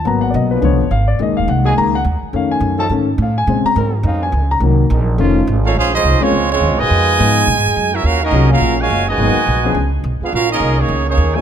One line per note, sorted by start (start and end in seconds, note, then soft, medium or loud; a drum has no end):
0.05 0.33 G#1 medium
0.05 0.59 F#3 soft
0.05 0.59 A#3 soft
0.05 0.60 B3 medium
0.05 0.22 A#5 medium
0.21 0.33 F#5 medium
0.30 0.61 B1 loud
0.30 0.33 D5 medium
0.35 0.51 D#5 medium
0.51 0.89 F3 medium
0.51 0.89 C#4 medium
0.51 0.89 D4 medium
0.51 0.62 B4 medium
0.51 0.89 B4 loud
0.62 0.71 C#2 medium
0.62 0.82 D3 medium
0.62 0.82 F3 medium
0.62 0.83 B3 medium
0.62 0.90 C#5 medium
0.71 0.80 B1 medium
0.81 0.90 G#1 medium
0.91 1.18 G#1 medium
0.91 1.07 F5 medium
1.08 1.19 D5 medium
1.19 1.28 A#1 medium
1.19 1.73 D#3 soft
1.19 1.75 G#3 soft
1.19 1.75 A#3 medium
1.19 1.37 D#5 medium
1.28 1.38 F#1 medium
1.37 1.47 D#1 medium
1.37 1.48 F5 medium
1.48 1.75 C2 loud
1.48 1.65 F#5 medium
1.64 1.72 F#3 loud
1.64 1.72 A#3 medium
1.64 1.72 D#4 loud
1.64 1.73 G#4 loud
1.64 1.77 G#5 medium
1.75 2.04 C#2 medium
1.75 1.91 D#3 soft
1.75 1.91 G#3 soft
1.75 1.92 A#3 medium
1.75 1.93 A#5 loud
1.95 2.02 F#5 medium
2.04 2.20 D#2 medium
2.22 muted upright bass stroke soft
2.33 2.60 F2 medium
2.33 2.76 D#3 soft
2.33 2.77 A3 soft
2.33 2.77 C#4 medium
2.33 2.51 F5 medium
2.51 2.77 G#5 medium
2.60 2.89 F#2 loud
2.78 2.86 F3 loud
2.78 2.86 C#4 medium
2.78 2.86 D#4 medium
2.78 2.86 A4 loud
2.78 2.91 A5 loud
2.90 3.17 G#2 medium
2.90 3.06 D#3 soft
2.90 3.06 A3 soft
2.90 3.06 C#4 medium
3.18 3.46 A2 loud
3.22 3.37 F5 medium
3.38 3.63 G#5 medium
3.47 3.63 A#2 loud
3.47 3.68 C#3 soft
3.47 3.69 G#3 soft
3.47 3.69 C4 medium
3.64 3.76 A#5 loud
3.64 muted upright bass stroke soft
3.76 4.03 G#2 loud
3.76 4.03 G#3 medium
3.76 4.02 C4 medium
3.76 4.02 C#4 medium
3.76 4.03 A#4 loud
4.03 4.32 F2 loud
4.03 4.46 G#3 medium
4.03 4.46 C4 medium
4.03 4.46 C#4 medium
4.03 4.46 D#4 loud
4.07 4.22 F5 medium
4.23 4.49 G#5 medium
4.32 4.60 C#2 loud
4.51 4.58 A#5 medium
4.60 4.89 C2 medium
4.60 4.82 D#3 medium
4.60 4.83 F#3 soft
4.60 4.83 A#3 medium
4.90 5.18 A#1 loud
4.90 5.18 F#3 medium
4.90 5.18 C4 medium
4.90 5.18 D#4 medium
4.90 5.18 A#4 medium
5.18 5.46 F1 medium
5.18 5.39 D#3 medium
5.18 5.61 F3 loud
5.18 5.39 A3 medium
5.18 5.39 C#4 medium
5.18 5.61 C#4 loud
5.18 5.61 D#4 loud
5.18 5.61 F4 loud
5.47 5.74 G#1 loud
5.65 5.76 A3 medium
5.65 5.74 C#4 medium
5.65 5.76 D#4 medium
5.65 5.75 F4 medium
5.65 5.76 A4 medium
5.65 5.76 C#5 medium
5.65 5.76 F5 medium
5.75 6.03 A#1 medium
5.75 5.92 G#3 medium
5.75 5.91 C#4 medium
5.75 5.93 C#4 loud
5.75 5.92 F4 medium
5.75 5.93 C5 medium
5.75 5.93 F5 loud
5.79 5.93 G#4 medium
5.93 6.20 F3 medium
5.93 6.19 G#3 medium
5.93 6.20 C#4 medium
5.93 6.19 D#4 medium
5.93 6.21 G#4 medium
5.93 6.20 C5 medium
5.93 6.21 D#5 loud
6.04 6.20 C2 loud
6.21 6.50 F3 medium
6.21 6.31 G#3 medium
6.21 6.50 G#3 medium
6.21 6.51 G#3 medium
6.21 6.32 A#3 medium
6.21 6.32 C4 medium
6.21 6.51 C4 medium
6.21 6.32 C#4 medium
6.21 6.49 C#4 medium
6.21 6.32 F4 medium
6.21 6.51 F4 medium
6.21 6.51 C#5 loud
6.21 muted upright bass stroke soft
6.32 6.60 C#2 medium
6.50 6.77 F3 medium
6.50 6.77 G#3 medium
6.50 6.78 G#3 medium
6.50 6.78 C4 medium
6.50 6.77 C#4 medium
6.50 6.77 F4 medium
6.50 6.78 C#5 loud
6.61 6.70 D#2 medium
6.70 6.80 C#2 medium
6.79 6.89 A#1 medium
6.79 7.47 B2 loud
6.79 7.48 D#3 loud
6.79 7.93 G#3 loud
6.79 7.48 F4 medium
6.79 7.48 B4 loud
6.79 7.47 D#5 loud
6.79 7.93 G#5 loud
6.90 7.18 F2 medium
7.18 7.47 G#2 loud
7.18 7.47 F3 medium
7.18 7.47 G#3 medium
7.18 7.48 B3 medium
7.18 7.48 D#4 medium
7.18 7.48 G#4 medium
7.47 7.57 A#2 loud
7.57 7.65 G#2 medium
7.66 7.75 F#2 medium
7.76 8.03 F#2 loud
7.93 8.05 C#4 medium
7.93 8.04 E4 medium
7.93 8.05 F#4 medium
7.93 8.04 A#4 medium
7.93 8.05 E5 medium
8.04 8.31 D#2 medium
8.04 8.21 A#3 medium
8.04 8.21 C#4 medium
8.04 8.22 C#4 loud
8.04 8.21 F4 medium
8.04 8.22 F#4 medium
8.04 8.22 A#4 medium
8.04 8.22 F5 loud
8.22 8.48 F#3 medium
8.22 8.48 A#3 medium
8.22 8.49 C#4 medium
8.22 8.48 D#4 medium
8.22 8.49 F#4 medium
8.22 8.48 A#4 medium
8.22 8.49 D#5 medium
8.31 8.59 C2 loud
8.31 8.74 F#3 medium
8.31 8.75 A#3 medium
8.31 8.75 C#4 medium
8.31 8.75 F4 medium
8.31 8.75 G#4 medium
8.50 8.76 A#3 medium
8.50 8.77 C#4 medium
8.50 8.76 F4 medium
8.50 8.78 F#4 loud
8.50 8.77 A#4 medium
8.50 8.78 F5 loud
8.60 8.88 A#1 medium
8.80 9.08 A#2 medium
8.80 9.08 C#3 medium
8.80 9.07 G#3 medium
8.80 9.08 F#4 medium
8.80 9.09 C#5 loud
8.80 9.09 F5 loud
8.80 9.07 G#5 loud
8.90 9.17 F#1 loud
9.08 9.90 B2 medium
9.08 9.72 D#3 medium
9.08 9.90 G#3 medium
9.08 9.73 F#4 medium
9.08 9.91 B4 medium
9.08 9.73 D#5 medium
9.08 9.91 G#5 loud
9.18 9.34 G#1 loud
9.18 9.33 F#3 medium
9.18 9.34 A#3 medium
9.18 9.34 B3 medium
9.18 9.34 D#4 medium
9.18 9.34 G#4 medium
9.35 muted upright bass stroke soft
9.47 9.74 A#1 loud
9.64 9.75 F3 medium
9.64 9.75 B3 medium
9.64 9.75 C#4 medium
9.64 9.75 D4 medium
9.64 9.75 G#4 medium
9.75 10.03 C#2 medium
10.04 10.19 B1 medium
10.21 10.33 G#3 medium
10.21 10.33 B3 medium
10.21 10.33 D4 medium
10.21 10.32 F4 medium
10.21 10.33 G#4 medium
10.21 10.33 B4 medium
10.21 10.33 F5 medium
10.21 muted upright bass stroke soft
10.33 10.59 A#1 medium
10.33 10.49 C#4 medium
10.33 10.49 F4 medium
10.33 10.49 F#4 medium
10.33 10.49 A#4 medium
10.33 10.49 F5 loud
10.50 10.76 D#3 medium
10.50 10.76 A#3 medium
10.50 10.77 C#4 medium
10.50 10.76 D#4 medium
10.50 10.78 G#4 medium
10.50 10.77 A#4 medium
10.50 10.78 D#5 medium
10.60 10.88 C2 loud
10.78 11.06 D#3 medium
10.78 11.07 A#3 medium
10.78 11.08 A#3 medium
10.78 11.07 C#4 medium
10.78 11.08 D#4 medium
10.78 11.08 G#4 medium
10.78 11.08 C#5 medium
10.88 11.17 C#2 loud
11.07 11.34 D#3 medium
11.07 11.34 A#3 medium
11.07 11.34 C#4 medium
11.07 11.34 D#4 medium
11.07 11.34 G#4 medium
11.07 11.34 C#5 medium
11.17 11.41 D#2 loud
11.34 11.41 C#3 loud
11.34 11.41 D#3 loud
11.34 11.41 F3 medium
11.34 11.41 F#3 loud
11.34 11.41 A3 medium
11.34 11.41 C#4 medium
11.34 11.41 D#4 loud
11.34 11.41 D#4 medium
11.34 11.41 A4 medium
11.34 11.41 C#5 medium
11.34 11.41 G#5 loud